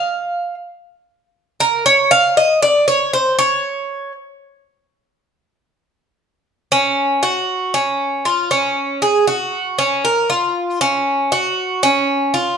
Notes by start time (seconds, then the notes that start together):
Already playing: F5
1.60 A#4
1.86 C#5
2.11 F5
2.37 D#5
2.62 D5
2.88 C#5
3.13 C5
3.39 C#5
6.72 C#4
7.23 F#4
7.74 C#4
8.25 F4
8.51 C#4
9.02 G#4
9.27 F#4
9.79 C#4
10.05 A#4
10.30 F4
10.81 C#4
11.32 F#4
11.83 C#4
12.34 F4